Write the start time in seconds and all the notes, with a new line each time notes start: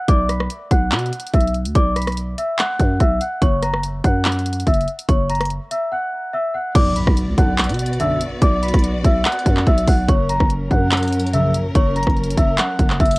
0.09 B1 D5 D6, kick, closed hi-hat
0.29 B5 B6, cross-stick, closed hi-hat
0.40 cross-stick
0.50 closed hi-hat
0.71 B1 F#5 F#6, kick, closed hi-hat
0.92 B2, clap, closed hi-hat
0.99 closed hi-hat
1.06 closed hi-hat
1.13 closed hi-hat
1.20 closed hi-hat
1.26 closed hi-hat
1.33 B1 E5 E6, kick, closed hi-hat
1.40 closed hi-hat
1.47 closed hi-hat
1.54 closed hi-hat
1.65 D2, closed hi-hat
1.75 B1 D5 D6, kick, closed hi-hat
1.96 B5 B6, cross-stick, closed hi-hat
2.02 closed hi-hat
2.07 cross-stick, closed hi-hat
2.12 closed hi-hat
2.17 closed hi-hat
2.38 E5 E6, closed hi-hat
2.59 F#5 F#6, clap, closed hi-hat
2.79 F#2, kick, closed hi-hat
3.00 B1 E5 E6, kick, closed hi-hat
3.21 F#5 F#6, closed hi-hat
3.42 F#1 C#5 C#6, kick, closed hi-hat
3.63 A#5 A#6, cross-stick, closed hi-hat
3.74 cross-stick
3.83 closed hi-hat
4.04 F#2 F#5 F#6, kick, closed hi-hat
4.25 clap, closed hi-hat
4.32 closed hi-hat
4.39 closed hi-hat
4.46 closed hi-hat
4.53 closed hi-hat
4.60 closed hi-hat
4.67 F#1 E5 E6, kick, closed hi-hat
4.74 closed hi-hat
4.81 closed hi-hat
4.88 closed hi-hat
4.99 closed hi-hat
5.08 F#1 C#5 C#6, kick, closed hi-hat
5.29 A#5 A#6, closed hi-hat, open hi-hat
5.35 closed hi-hat
5.40 cross-stick, closed hi-hat
5.45 closed hi-hat
5.50 closed hi-hat
5.71 E5 E6, closed hi-hat
5.92 F#5 F#6
6.34 E5 E6
6.54 F#5 F#6
6.75 B1 B3 F#4 D5 D6, kick, closed hi-hat, crash, impact
6.96 B5 B6, closed hi-hat
7.07 B1, kick, cross-stick
7.17 closed hi-hat
7.28 C#2
7.38 B1 F#2 D3 F#5 F#6, kick, closed hi-hat
7.58 clap, closed hi-hat
7.64 closed hi-hat
7.69 B2, closed hi-hat
7.74 closed hi-hat
7.79 closed hi-hat
7.86 closed hi-hat
7.93 closed hi-hat
8.00 B1 F#2 D3 E5 E6, closed hi-hat
8.21 closed hi-hat
8.42 B1 D5 D6, kick, closed hi-hat
8.63 B5 B6, closed hi-hat
8.68 closed hi-hat
8.74 B1, kick, cross-stick, closed hi-hat
8.79 closed hi-hat
8.84 closed hi-hat
8.94 A#1
9.04 B1 E5 E6, kick, closed hi-hat
9.25 F#5 F#6, clap, closed hi-hat
9.32 closed hi-hat
9.39 closed hi-hat
9.46 F#2, kick, closed hi-hat
9.57 clap
9.67 B1 E5 E6, kick, closed hi-hat
9.78 closed hi-hat
9.87 B1 F#5 F#6, kick, open hi-hat
10.08 F#1 F#3 C#4 A#4 C#5 C#6, kick, closed hi-hat
10.29 A#5 A#6, closed hi-hat
10.40 F#1, kick, cross-stick
10.50 closed hi-hat
10.71 A#1 F#2 C#3 F#5 F#6, kick, closed hi-hat
10.92 clap, closed hi-hat
10.97 closed hi-hat
11.03 closed hi-hat
11.08 closed hi-hat
11.13 closed hi-hat
11.20 closed hi-hat
11.27 closed hi-hat
11.33 A#1 F#2 C#3 E5 E6, closed hi-hat
11.54 closed hi-hat
11.75 F#1 C#5 C#6, kick, closed hi-hat
11.96 A#5 A#6, closed hi-hat
12.03 closed hi-hat
12.07 F#1, kick, cross-stick, closed hi-hat
12.17 closed hi-hat
12.24 closed hi-hat
12.31 closed hi-hat
12.38 F#1 E5 E6, kick, closed hi-hat
12.58 F#5 F#6, clap, closed hi-hat
12.79 F#1, kick, closed hi-hat
12.90 clap
13.00 F#1 E5 E6, kick, closed hi-hat
13.06 closed hi-hat
13.11 closed hi-hat